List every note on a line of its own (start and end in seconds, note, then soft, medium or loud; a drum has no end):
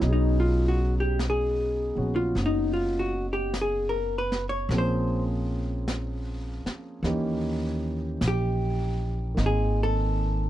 0.00 1.94 B1 medium
0.00 4.67 F#3 medium
0.00 1.94 B3 medium
0.00 1.96 C#4 medium
0.00 4.71 D#4 medium
0.00 brush sweep soft
0.00 snare soft
0.07 4.71 G#4 medium
0.13 0.39 D#4 medium
0.40 0.79 F4 medium
0.68 0.93 F#4 medium
1.00 1.19 G4 medium
1.19 brush sweep soft
1.19 snare soft
1.19 hi-hat pedal soft
1.30 2.18 G#4 medium
1.95 2.33 A#1 medium
1.95 4.70 B3 soft
1.95 4.70 C#4 soft
1.95 4.71 F#4 soft
2.16 2.35 F4 medium
2.35 4.66 F#1 medium
2.35 brush sweep soft
2.35 snare soft
2.46 2.73 D#4 medium
2.73 3.13 F4 medium
2.99 3.26 F#4 medium
3.33 3.52 G4 medium
3.54 brush sweep soft
3.54 snare soft
3.54 hi-hat pedal medium
3.61 3.96 G#4 medium
3.89 4.18 A#4 medium
4.18 4.44 B4 medium
4.32 snare soft
4.49 4.69 C#5 medium
4.69 6.61 A#1 medium
4.69 7.04 F3 medium
4.69 7.03 A#3 medium
4.69 7.05 C4 medium
4.69 7.03 C#4 soft
4.69 7.05 G#4 medium
4.69 brush sweep soft
4.69 snare soft
4.78 5.23 C5 medium
5.88 brush sweep soft
5.88 snare soft
5.88 hi-hat pedal medium
6.66 muted upright bass stroke soft
6.66 snare soft
7.03 8.16 D#2 medium
7.03 9.37 E3 medium
7.03 9.35 A#3 medium
7.03 9.38 C#4 soft
7.03 9.37 D#4 soft
7.03 9.38 G4 medium
7.03 brush sweep soft
7.03 snare soft
8.21 9.34 A#1 medium
8.21 brush sweep soft
8.21 snare medium
8.21 hi-hat pedal medium
8.28 9.37 G4 medium
9.34 10.50 G#1 medium
9.34 10.50 D#3 medium
9.34 10.50 A#3 soft
9.34 10.50 C4 soft
9.34 brush sweep soft
9.34 snare soft
9.39 10.50 D#4 soft
9.46 9.80 G#4 medium
9.83 10.50 A4 medium